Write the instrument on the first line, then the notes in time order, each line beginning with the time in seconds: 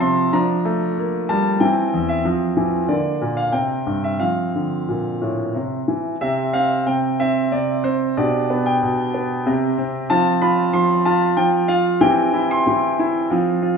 grand piano
Already playing: F3 C4 A5
0.00 C3 C6
0.33 F3 D4 A#5
0.65 A3
0.98 A#3
1.29 G3 A5
1.60 E3 C4 G5
1.94 E2
2.09 E5
2.25 F3 C4
2.57 E3
2.88 D3 A#3 D5
3.21 A#2
3.37 F5
3.52 C3 C4 G5
3.86 G2
4.04 E5
4.19 F3 C4 F5
4.55 D3
4.88 A#2
5.22 A2
5.55 C3
5.88 E3
6.21 C3 C4 G4 E5
6.53 C4 F5
6.87 C3 G5
7.20 C4 E5
7.52 C3 D5
7.84 C4 C5
8.17 B2 D4 G4 D5
8.50 B3
8.66 G5
8.83 B2
9.14 B3
9.46 C3 C4 G4
9.78 C4
10.10 F3 C4 F4 A5
10.42 F4 B5
10.73 F3 C6
11.05 F4 A5
11.37 F3 G5
11.68 F4 F5
12.01 E3 C4 G4 G5
12.33 E4
12.51 C6
12.67 E3
12.99 E4
13.30 F3 C4 F4
13.62 F4